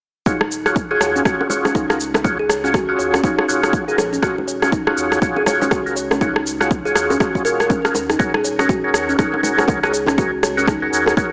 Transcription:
0.26 D#1 D#4 F4 F#4 G#4 C#5, kick, shaker
0.41 cross-stick, low bongo
0.51 shaker
0.66 F4 F#4 G#4 C#5, cross-stick, shaker
0.76 kick, shaker
0.91 F4 F#4 G#4 C#5
1.01 D#2 C#5, cross-stick, shaker
1.16 C#4, shaker
1.25 D#1 F4 F#4 G#4 C#5, kick, cross-stick, shaker
1.41 high bongo
1.50 F4 F#4 G#4 C#5, low bongo, shaker
1.65 C#4, cross-stick, low bongo, shaker
1.75 C#2 D#4, kick, high bongo, shaker
1.89 F4 F#4 G#4 A#4, cross-stick, shaker
2.00 shaker
2.14 cross-stick, high bongo, low bongo, shaker
2.24 F4 F#4 G#4 C#5, kick, shaker
2.39 G#4
2.49 C#5, cross-stick, shaker
2.64 C#4 F4 F#4 G#4 C#5, shaker
2.74 F#4, kick, cross-stick, shaker
2.89 F4 F#4 G#4 C#5
2.99 D#2 C#5, shaker
3.14 C#4, cross-stick, high bongo, shaker
3.24 D#4 F4 F#4 G#4 C#5, kick, shaker
3.39 cross-stick
3.48 D#1 F4 F#4 G#4 C#5, shaker
3.63 cross-stick, shaker
3.73 kick, shaker
3.88 F4 F#4 G#4 A#4, shaker
3.98 A#1 C#5, cross-stick, high bongo, low bongo, shaker
4.13 C#4, shaker
4.22 D#1 F4 F#4 G#4 C#5, kick, cross-stick, shaker
4.38 low bongo
4.48 C#5, shaker
4.62 C#4 F4 F#4 G#4 C#5, cross-stick, shaker
4.72 D#4, kick, shaker
4.87 F4 F#4 G#4 C#5, cross-stick
4.97 D#2, shaker
5.12 cross-stick, shaker
5.22 D#1 F4 F#4 G#4 C#5, kick, shaker
5.36 G#4, high bongo
5.46 F4 F#4 G#4 C#5, cross-stick, low bongo, shaker
5.62 C#4, low bongo, shaker
5.71 C#2 F#4, kick, cross-stick, high bongo, shaker
5.86 F4 F#4 G#4 A#4, shaker
5.96 C#5, shaker
6.11 C#4, cross-stick, high bongo, low bongo, shaker
6.21 D#4 F4 F#4 G#4 C#5, kick, shaker
6.36 cross-stick
6.47 shaker
6.60 F4 F#4 G#4 C#5, cross-stick, shaker
6.71 kick, shaker
6.85 F4 F#4 G#4 C#5, shaker
6.95 D#2 C#5, cross-stick, shaker
7.10 C#4, high bongo, shaker
7.20 F4 F#4 G#4 C#5, kick, cross-stick, shaker
7.35 kick, shaker
7.45 D#1 F4 F#4 G#4 A#4 C#5, shaker
7.60 A#4, cross-stick, shaker
7.70 C#4, kick, low bongo, shaker
7.85 F4 F#4 G#4 A#4, cross-stick, shaker
7.95 D#2, high bongo, low bongo, shaker
8.10 D#4, cross-stick, shaker
8.19 D#1 F#4 G#4 A#4 C#5, kick, shaker
8.34 G#4, cross-stick, low bongo
8.44 C#5, shaker
8.59 C#4 F#4 G#4 A#4 C#5, cross-stick, shaker
8.69 F#4, kick, shaker
8.84 F#4 G#4 A#4 C#5
8.94 D#2 C#5, cross-stick, shaker
9.09 C#4, shaker
9.19 D#1 D#4 F#4 G#4 A#4 C#5, kick, cross-stick, shaker
9.34 high bongo
9.43 F#4 G#4 A#4 C#5, low bongo, shaker
9.58 cross-stick, low bongo, shaker
9.68 C#2, kick, high bongo, shaker
9.83 F#4 G#4 A#4 C#5, cross-stick, shaker
9.94 C#5, shaker
10.06 C#4, cross-stick, high bongo, low bongo, shaker
10.18 F#4 G#4 A#4 C#5, kick, shaker
10.43 C#5, cross-stick, shaker
10.57 C#4 F#4 G#4 A#4 C#5, shaker
10.68 D#4, kick, cross-stick, shaker
10.82 F#4 G#4 A#4 C#5
10.93 D#2, shaker
11.06 cross-stick, high bongo, shaker
11.17 F#4 G#4 A#4 C#5, kick, shaker

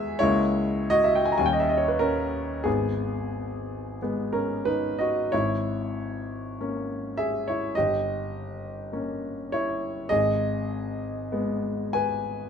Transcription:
Already playing: E2 G#3 B3 G#4 E5
0.19 C#2 G#3 A#3 E4 C#5
0.90 F#4 D#5
1.04 E5
1.15 G5
1.25 G#5
1.32 A#5
1.38 D#2 G3 C#4 G#5
1.46 G5
1.53 D#5
1.60 E5
1.69 D#5
1.77 C#5
1.88 B4
1.99 C#4 A#4
2.64 G#1 B3 G#4
4.02 G#3 B3
4.33 C#4 A#4
4.65 D#4 B4
4.99 F#4 D#5
5.32 G#1 E4 C#5
6.60 A#3 C#4
7.17 G#4 E5
7.48 E4 C#5
7.75 G1 G4 D#5
8.92 A#3 C#4
9.52 E4 C#5
10.09 G#1 G#4 D#5
11.32 G#3 B3
11.93 B4 G#5

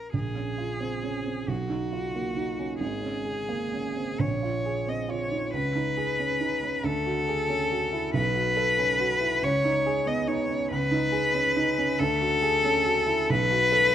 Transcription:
Already playing: A#4
0.13 A#1 G#4
0.35 C#4
0.58 F4
0.80 C4
1.03 C#4
1.26 C4
1.48 B1 F#4
1.70 D#4
1.93 F4
2.15 A#3
2.36 D#4
2.59 C#4
2.80 G#1 G#4
3.02 C#4
3.25 G#4
3.49 A#3
3.73 C#4
3.97 C4
4.19 A#1 C#5
4.43 F4
4.66 G#4
4.87 C4 D#5
5.09 F4 C#5
5.31 D#4
5.53 C#2 B4
5.76 D#4
5.97 G#4
6.19 C#4
6.40 D#4
6.63 C#4
6.84 D2 A4
7.06 F#4
7.28 G#4
7.49 C#4
7.72 F#4
7.93 E4
8.13 B1 B4
8.35 F#4
8.57 A4
8.78 C#4
9.00 F#4
9.21 E4
9.42 C#2 C#5
9.65 D#4
9.86 G#4
10.06 B3 D#5
10.28 D#4 C#5
10.49 C#4
10.71 C#2 B4
10.91 D#4
11.12 G#4
11.34 C#4
11.57 D#4
11.78 C#4
11.99 D2 A4
12.21 F#4
12.42 G#4
12.64 C#4
12.85 F#4
13.06 E4
13.29 B1 B4
13.51 F#4
13.72 A4

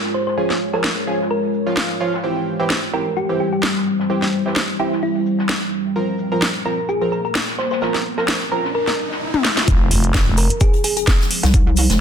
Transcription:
Already playing: G#3 F4 C#5
0.04 snare
0.14 C5, shaker
0.27 C5, snare
0.38 F3 C#4 G#4, shaker
0.50 snare
0.73 F3 C#4 G#4 A#4, snare
0.84 snare
1.07 F3 C#4 G#4
1.21 snare
1.31 A#4, open hi-hat
1.54 shaker
1.67 F3 C#4 F4, snare
1.77 F3 C#4 F4, snare
1.90 snare
2.00 F3 C#4 F4
2.13 snare, shaker
2.23 E3 G3 C4 E4 G4 C5, shaker
2.46 shaker
2.60 E3 C4 G4
2.70 snare
2.93 E3 C4 G4 A#4
3.17 G4, shaker
3.29 E3 C4 G4, closed hi-hat
3.40 G4, shaker
3.53 G4, closed hi-hat
3.63 snare
3.76 snare
3.86 shaker
3.99 snare
4.10 E3 C4 G4, shaker
4.22 snare
4.46 E3 C4 G4, snare
4.56 snare
4.79 E3 C4 E4 G4, shaker
4.92 snare
5.02 E4, open hi-hat
5.26 shaker
5.39 snare
5.49 snare
5.61 closed hi-hat
5.73 shaker
5.96 F3 A#3 C4 F4 A#4, riser, shaker
6.19 shaker
6.32 F3 C4 A#4
6.42 snare
6.66 F3 C4 A#4, shaker
6.89 G#4, shaker
7.01 F3 C4 A#4, closed hi-hat
7.12 A#4, shaker
7.25 A#4, closed hi-hat
7.35 snare
7.48 snare
7.58 C5, snare, shaker
7.70 C5, snare, shaker
7.81 F3 C4 G4 A#4, snare, shaker
7.94 snare
8.06 shaker
8.17 F3 C4 A#4, snare
8.28 snare
8.51 F3 C4 A#4, shaker
8.64 snare
8.75 A#4, open hi-hat
8.87 snare
8.98 shaker
9.11 snare
9.34 high tom
9.45 snare
9.57 snare
9.68 F1 F3 G#3 C5, kick, closed hi-hat, impact, shaker
9.91 F1, open hi-hat, shaker
10.04 closed hi-hat
10.14 kick, snare, closed hi-hat, shaker
10.27 F1
10.37 A#4, open hi-hat, shaker
10.50 closed hi-hat
10.61 G#4, kick, closed hi-hat, shaker
10.73 closed hi-hat
10.84 G#4, open hi-hat, shaker
10.96 G#4, closed hi-hat
11.07 kick, snare, closed hi-hat, shaker
11.20 snare
11.31 open hi-hat, shaker
11.43 C2, snare, closed hi-hat
11.54 kick, closed hi-hat, shaker
11.76 open hi-hat, shaker
11.89 F1, snare, closed hi-hat

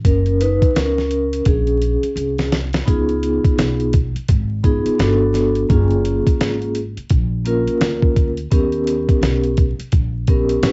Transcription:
0.05 F#1 C#4 A#4, kick, closed hi-hat
0.26 closed hi-hat
0.41 D#4 B4, closed hi-hat
0.62 muted upright bass stroke, kick, closed hi-hat
0.75 C#2 C#4 A#4, snare, closed hi-hat
0.98 snare
1.11 closed hi-hat
1.33 closed hi-hat
1.45 A#1 C#4 G#4, kick, closed hi-hat
1.67 closed hi-hat
1.82 closed hi-hat
2.02 muted upright bass stroke, closed hi-hat
2.16 C2, closed hi-hat
2.38 snare, closed hi-hat
2.52 snare, closed hi-hat
2.73 snare, closed hi-hat
2.86 C#2 B3 D#4 F4 G#4, kick, closed hi-hat
3.09 closed hi-hat
3.23 closed hi-hat
3.44 muted upright bass stroke, kick, closed hi-hat
3.58 B1, snare, closed hi-hat
3.80 closed hi-hat
3.93 kick, closed hi-hat
4.15 muted upright bass stroke, closed hi-hat
4.28 G#1, kick, closed hi-hat
4.63 B3 D#4 F4 G#4, kick, closed hi-hat
4.85 muted upright bass stroke, closed hi-hat
4.98 G1 B3 D4 F#4 A4, snare, closed hi-hat
5.34 snare, closed hi-hat
5.55 closed hi-hat
5.69 F#1 A#3 C#4 F4 G#4, kick, closed hi-hat
5.91 closed hi-hat
6.05 closed hi-hat
6.27 kick, closed hi-hat
6.40 G#1, snare, closed hi-hat
6.62 closed hi-hat
6.75 closed hi-hat
6.97 muted upright bass stroke, closed hi-hat
7.10 A#1, kick, closed hi-hat
7.45 A#3 C#4 F4 A#4, closed hi-hat
7.66 muted upright bass stroke, closed hi-hat
7.81 D2, snare, closed hi-hat
8.02 kick
8.16 kick, closed hi-hat
8.37 closed hi-hat
8.51 D#2 B3 C#4 G4 A#4, kick, closed hi-hat
8.72 closed hi-hat
8.87 closed hi-hat
9.09 muted upright bass stroke, kick, closed hi-hat
9.21 B1, snare, closed hi-hat
9.43 closed hi-hat
9.57 kick, closed hi-hat
9.79 muted upright bass stroke, closed hi-hat
9.92 A#1, kick, closed hi-hat
10.27 B3 C#4 G4 A#4, kick, closed hi-hat
10.49 closed hi-hat
10.63 A1 C#4 E4 G4 B4, snare, closed hi-hat

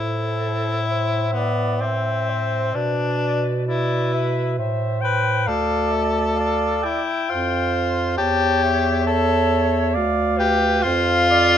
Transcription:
Already playing: A2 E4 A4 C5
0.87 C5 E5
1.33 B3
1.37 D5
1.81 C4 E5
2.30 C5
2.73 B2 D4 B4 D5
3.67 E4 B4 D5
4.14 E5
4.59 A2 C5 E5
5.02 B4 G5
5.47 D2 A4 D5 F5
5.92 E5
6.36 D5 F5
6.83 E4 G5
7.29 F2 F4 C5
8.18 E2 G4 C#5 A5
8.63 E5
9.06 A4 C#5
9.93 D2 D5 F5
10.38 G4 B4
10.82 F2 F4 C5 F5
11.30 D5

